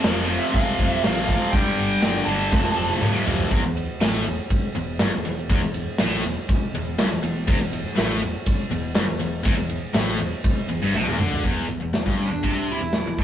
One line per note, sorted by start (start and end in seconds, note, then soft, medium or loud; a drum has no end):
0.04 0.37 F1 medium
0.04 0.28 F2 medium
0.04 0.29 C3 medium
0.04 0.29 F3 loud
0.04 snare loud
0.04 open hi-hat medium
0.29 0.52 F2 medium
0.29 0.53 C3 medium
0.29 0.53 F3 medium
0.39 0.44 E5 medium
0.53 0.71 C2 medium
0.53 1.03 F2 medium
0.53 1.04 C3 loud
0.53 1.04 F3 loud
0.53 0.91 F5 medium
0.53 kick loud
0.53 open hi-hat medium
0.79 0.96 F1 medium
0.79 kick medium
0.91 1.02 E5 medium
1.03 1.37 A1 loud
1.03 1.28 F2 medium
1.03 1.29 C3 medium
1.03 1.29 F3 medium
1.03 1.55 F5 medium
1.03 snare loud
1.03 open hi-hat medium
1.29 1.52 F2 medium
1.29 1.53 C3 loud
1.29 1.53 F3 loud
1.29 kick medium
1.52 1.70 G1 medium
1.52 2.01 G2 medium
1.52 2.02 D3 loud
1.52 2.03 G3 loud
1.52 2.01 G5 loud
1.52 kick loud
1.52 open hi-hat medium
1.78 1.94 G1 medium
2.02 2.19 G1 medium
2.02 2.26 G2 medium
2.02 2.26 D3 medium
2.02 2.27 G3 medium
2.02 2.26 G5 loud
2.02 snare loud
2.02 open hi-hat medium
2.25 2.53 G1 medium
2.25 2.51 G2 medium
2.25 2.51 D3 medium
2.25 2.51 G3 loud
2.25 3.22 A5 medium
2.51 2.69 F1 medium
2.51 3.00 F2 medium
2.51 3.00 C3 loud
2.51 3.01 F3 loud
2.51 kick loud
2.51 snare medium
2.65 snare medium
2.75 2.92 F1 medium
2.89 high tom medium
3.01 3.18 D2 medium
3.01 3.23 F2 medium
3.01 3.24 C3 medium
3.01 3.24 F3 medium
3.01 mid tom medium
3.24 3.42 F1 medium
3.24 3.49 F2 medium
3.24 3.49 C3 medium
3.24 3.49 F3 medium
3.24 floor tom loud
3.39 floor tom medium
3.51 3.62 E1 medium
3.51 3.63 E2 loud
3.51 kick loud
3.51 ride loud
3.62 3.86 E1 medium
3.62 3.84 E2 medium
3.77 ride medium
4.00 4.24 A1 loud
4.00 4.25 A2 loud
4.00 snare loud
4.00 ride loud
4.25 4.38 E1 medium
4.25 4.38 E2 medium
4.25 ride medium
4.50 kick loud
4.50 ride medium
4.75 4.98 E1 medium
4.75 4.95 E2 medium
4.75 ride medium
4.99 5.12 G1 loud
4.99 5.11 G2 medium
4.99 snare loud
4.99 ride medium
5.13 5.24 E1 medium
5.13 5.24 E2 medium
5.25 5.48 E1 medium
5.25 5.45 E2 medium
5.25 ride medium
5.50 5.61 E1 loud
5.50 5.61 E2 loud
5.50 kick loud
5.50 ride medium
5.63 5.86 E1 medium
5.63 5.82 E2 medium
5.74 ride medium
5.98 6.23 A1 medium
5.98 6.24 A2 loud
5.98 snare loud
5.98 ride medium
6.24 6.35 E1 medium
6.24 6.37 E2 medium
6.24 ride medium
6.49 kick loud
6.49 ride loud
6.74 6.97 E1 medium
6.74 6.94 E2 medium
6.74 ride medium
6.99 7.10 G1 loud
6.99 7.10 G2 medium
6.99 snare loud
6.99 ride loud
7.11 7.22 E1 medium
7.11 7.23 E2 medium
7.23 7.46 E1 medium
7.23 7.43 E2 medium
7.23 ride medium
7.47 7.59 E1 medium
7.47 7.59 E2 loud
7.47 kick loud
7.47 ride loud
7.61 7.84 E1 medium
7.61 7.80 E2 medium
7.73 ride medium
7.86 snare soft
7.97 8.20 A1 medium
7.97 8.21 A2 loud
7.97 snare loud
7.97 ride loud
8.21 8.33 E1 medium
8.21 8.34 E2 medium
8.21 ride medium
8.46 kick medium
8.46 ride loud
8.71 8.94 E1 medium
8.71 8.91 E2 medium
8.71 ride medium
8.95 9.08 G1 loud
8.95 9.08 G2 loud
8.95 snare loud
8.95 ride loud
9.08 9.20 E1 medium
9.08 9.19 E2 medium
9.20 9.43 E1 medium
9.20 9.40 E2 medium
9.20 ride medium
9.45 9.57 E1 medium
9.45 9.57 E2 loud
9.45 kick loud
9.45 ride medium
9.58 9.81 E1 medium
9.58 9.78 E2 medium
9.69 ride medium
9.94 10.18 A1 medium
9.94 10.18 A2 loud
9.94 snare loud
9.94 ride loud
10.20 10.31 E1 medium
10.20 10.32 E2 medium
10.20 ride medium
10.44 kick loud
10.44 ride loud
10.69 10.81 E1 medium
10.69 10.81 E2 medium
10.69 ride medium
10.82 10.94 G1 medium
10.82 10.94 G2 loud
10.94 11.06 B1 loud
10.94 11.06 B2 medium
10.94 snare medium
11.07 11.18 E1 medium
11.07 11.19 E2 medium
11.07 high tom medium
11.19 11.42 D2 loud
11.19 11.43 D3 loud
11.19 mid tom medium
11.31 floor tom medium
11.44 11.67 E1 medium
11.44 11.68 E2 medium
11.44 kick medium
11.44 closed hi-hat medium
11.69 11.80 E1 medium
11.69 11.81 E2 medium
11.69 closed hi-hat medium
11.80 11.92 E1 medium
11.80 11.93 E2 medium
11.94 12.05 E1 medium
11.94 12.05 E2 medium
11.94 snare medium
11.94 closed hi-hat medium
12.05 12.29 G1 medium
12.05 12.30 G2 medium
12.05 kick medium
12.19 12.66 D4 medium
12.19 closed hi-hat soft
12.31 12.43 E1 medium
12.31 12.44 E2 medium
12.43 12.78 C2 medium
12.43 12.80 C3 medium
12.43 kick medium
12.43 closed hi-hat medium
12.68 13.20 E4 medium
12.68 closed hi-hat soft
12.80 13.04 E1 medium
12.80 13.01 E2 medium
12.93 snare loud
12.93 closed hi-hat medium
13.07 13.18 E1 medium
13.07 13.19 E2 medium
13.18 13.24 D2 medium
13.18 13.24 D3 medium
13.18 kick loud
13.18 closed hi-hat medium